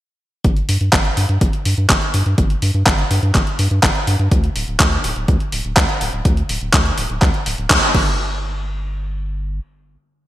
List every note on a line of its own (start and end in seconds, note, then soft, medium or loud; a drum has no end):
0.44 0.62 G1 medium
0.44 kick loud
0.44 closed hi-hat medium
0.57 closed hi-hat soft
0.69 0.78 G2 medium
0.69 open hi-hat loud
0.81 0.90 G2 medium
0.81 closed hi-hat soft
0.93 1.11 G1 medium
0.93 kick loud
0.93 clap loud
0.93 closed hi-hat medium
1.05 closed hi-hat soft
1.17 1.26 G2 medium
1.17 open hi-hat loud
1.29 1.38 G2 loud
1.29 closed hi-hat soft
1.41 1.50 G1 medium
1.41 kick loud
1.41 closed hi-hat medium
1.53 closed hi-hat soft
1.65 1.75 G2 medium
1.65 open hi-hat loud
1.78 1.87 G2 medium
1.78 closed hi-hat soft
1.90 1.99 G1 medium
1.90 kick loud
1.90 clap loud
1.90 closed hi-hat medium
2.02 closed hi-hat soft
2.14 2.23 G2 medium
2.14 open hi-hat loud
2.26 2.35 G2 medium
2.26 closed hi-hat soft
2.38 2.56 G1 loud
2.38 kick loud
2.38 closed hi-hat medium
2.50 closed hi-hat soft
2.62 2.71 G2 medium
2.62 open hi-hat medium
2.74 2.83 G2 medium
2.74 closed hi-hat soft
2.86 3.04 G1 medium
2.86 kick loud
2.86 clap loud
2.86 closed hi-hat medium
2.98 closed hi-hat soft
3.11 3.20 G2 medium
3.11 open hi-hat loud
3.23 3.32 G2 loud
3.23 closed hi-hat soft
3.35 3.44 G1 medium
3.35 kick loud
3.35 clap medium
3.35 closed hi-hat medium
3.47 closed hi-hat soft
3.59 3.68 G2 medium
3.59 open hi-hat medium
3.71 3.80 G2 medium
3.71 closed hi-hat soft
3.83 3.92 G1 loud
3.83 kick loud
3.83 clap loud
3.83 closed hi-hat medium
3.95 closed hi-hat soft
4.07 4.16 G2 medium
4.07 open hi-hat medium
4.19 4.28 G2 medium
4.19 closed hi-hat soft
4.31 4.49 D2 loud
4.31 kick loud
4.31 closed hi-hat medium
4.44 closed hi-hat soft
4.56 4.65 D1 medium
4.56 open hi-hat medium
4.68 4.77 D1 medium
4.68 closed hi-hat soft
4.80 4.98 D2 medium
4.80 kick loud
4.80 clap loud
4.80 closed hi-hat medium
4.92 closed hi-hat soft
5.04 5.13 D1 medium
5.04 open hi-hat loud
5.16 5.25 D1 loud
5.16 closed hi-hat soft
5.28 5.37 D2 medium
5.28 kick loud
5.28 closed hi-hat medium
5.40 closed hi-hat soft
5.52 5.62 D1 medium
5.52 open hi-hat medium
5.65 5.74 D1 medium
5.65 closed hi-hat soft
5.77 5.86 D2 loud
5.77 kick loud
5.77 clap loud
5.77 closed hi-hat medium
5.89 closed hi-hat soft
6.01 6.10 D1 medium
6.01 open hi-hat loud
6.13 6.22 D1 medium
6.13 closed hi-hat soft
6.25 6.43 D2 loud
6.25 kick loud
6.25 closed hi-hat medium
6.37 closed hi-hat soft
6.49 6.58 D1 medium
6.49 open hi-hat loud
6.61 6.70 D1 medium
6.61 closed hi-hat soft
6.73 6.91 D2 medium
6.73 kick loud
6.73 clap loud
6.73 closed hi-hat medium
6.86 closed hi-hat soft
6.98 7.07 D1 medium
6.98 open hi-hat loud
7.10 7.19 D1 loud
7.10 closed hi-hat soft
7.22 7.31 D2 medium
7.22 kick loud
7.22 clap medium
7.22 closed hi-hat medium
7.34 closed hi-hat soft
7.46 7.55 D1 medium
7.46 open hi-hat loud
7.58 7.67 D1 medium
7.58 closed hi-hat soft
7.70 7.79 D2 medium
7.70 kick loud
7.70 clap loud
7.70 closed hi-hat medium
7.82 closed hi-hat soft
7.94 9.60 G1 medium
7.94 kick loud
7.94 crash medium